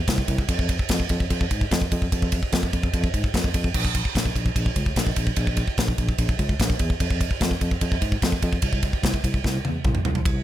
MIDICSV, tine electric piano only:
0, 0, Header, 1, 2, 480
1, 0, Start_track
1, 0, Tempo, 406780
1, 576, Time_signature, 4, 2, 24, 8
1, 12311, End_track
2, 0, Start_track
2, 0, Title_t, "Tine electric piano"
2, 0, Program_c, 0, 4
2, 94, Note_on_c, 0, 36, 114
2, 251, Note_off_c, 0, 36, 0
2, 332, Note_on_c, 0, 36, 105
2, 490, Note_off_c, 0, 36, 0
2, 575, Note_on_c, 0, 41, 92
2, 890, Note_off_c, 0, 41, 0
2, 1057, Note_on_c, 0, 41, 104
2, 1215, Note_off_c, 0, 41, 0
2, 1300, Note_on_c, 0, 41, 98
2, 1457, Note_off_c, 0, 41, 0
2, 1535, Note_on_c, 0, 41, 90
2, 1694, Note_off_c, 0, 41, 0
2, 1780, Note_on_c, 0, 44, 85
2, 1938, Note_off_c, 0, 44, 0
2, 2019, Note_on_c, 0, 41, 113
2, 2178, Note_off_c, 0, 41, 0
2, 2263, Note_on_c, 0, 41, 100
2, 2420, Note_off_c, 0, 41, 0
2, 2506, Note_on_c, 0, 41, 82
2, 2819, Note_off_c, 0, 41, 0
2, 2981, Note_on_c, 0, 41, 107
2, 3140, Note_off_c, 0, 41, 0
2, 3223, Note_on_c, 0, 41, 77
2, 3381, Note_off_c, 0, 41, 0
2, 3465, Note_on_c, 0, 41, 87
2, 3622, Note_off_c, 0, 41, 0
2, 3697, Note_on_c, 0, 44, 79
2, 3857, Note_off_c, 0, 44, 0
2, 3940, Note_on_c, 0, 41, 103
2, 4099, Note_off_c, 0, 41, 0
2, 4178, Note_on_c, 0, 41, 91
2, 4338, Note_off_c, 0, 41, 0
2, 4413, Note_on_c, 0, 34, 93
2, 4732, Note_off_c, 0, 34, 0
2, 4897, Note_on_c, 0, 34, 93
2, 5058, Note_off_c, 0, 34, 0
2, 5139, Note_on_c, 0, 34, 87
2, 5298, Note_off_c, 0, 34, 0
2, 5381, Note_on_c, 0, 34, 97
2, 5540, Note_off_c, 0, 34, 0
2, 5615, Note_on_c, 0, 37, 87
2, 5776, Note_off_c, 0, 37, 0
2, 5853, Note_on_c, 0, 34, 110
2, 6015, Note_off_c, 0, 34, 0
2, 6098, Note_on_c, 0, 34, 98
2, 6258, Note_off_c, 0, 34, 0
2, 6328, Note_on_c, 0, 34, 101
2, 6647, Note_off_c, 0, 34, 0
2, 6823, Note_on_c, 0, 34, 102
2, 6981, Note_off_c, 0, 34, 0
2, 7064, Note_on_c, 0, 34, 86
2, 7221, Note_off_c, 0, 34, 0
2, 7302, Note_on_c, 0, 34, 94
2, 7460, Note_off_c, 0, 34, 0
2, 7539, Note_on_c, 0, 37, 97
2, 7698, Note_off_c, 0, 37, 0
2, 7783, Note_on_c, 0, 34, 101
2, 7940, Note_off_c, 0, 34, 0
2, 8018, Note_on_c, 0, 40, 89
2, 8177, Note_off_c, 0, 40, 0
2, 8265, Note_on_c, 0, 41, 90
2, 8577, Note_off_c, 0, 41, 0
2, 8737, Note_on_c, 0, 41, 101
2, 8895, Note_off_c, 0, 41, 0
2, 8980, Note_on_c, 0, 41, 87
2, 9137, Note_off_c, 0, 41, 0
2, 9219, Note_on_c, 0, 41, 93
2, 9377, Note_off_c, 0, 41, 0
2, 9457, Note_on_c, 0, 44, 89
2, 9615, Note_off_c, 0, 44, 0
2, 9708, Note_on_c, 0, 41, 103
2, 9862, Note_off_c, 0, 41, 0
2, 9942, Note_on_c, 0, 41, 95
2, 10098, Note_off_c, 0, 41, 0
2, 10181, Note_on_c, 0, 36, 84
2, 10493, Note_off_c, 0, 36, 0
2, 10655, Note_on_c, 0, 36, 106
2, 10812, Note_off_c, 0, 36, 0
2, 10901, Note_on_c, 0, 36, 91
2, 11057, Note_off_c, 0, 36, 0
2, 11137, Note_on_c, 0, 36, 103
2, 11293, Note_off_c, 0, 36, 0
2, 11377, Note_on_c, 0, 40, 79
2, 11534, Note_off_c, 0, 40, 0
2, 11618, Note_on_c, 0, 36, 100
2, 11774, Note_off_c, 0, 36, 0
2, 11859, Note_on_c, 0, 36, 95
2, 12015, Note_off_c, 0, 36, 0
2, 12096, Note_on_c, 0, 36, 93
2, 12296, Note_off_c, 0, 36, 0
2, 12311, End_track
0, 0, End_of_file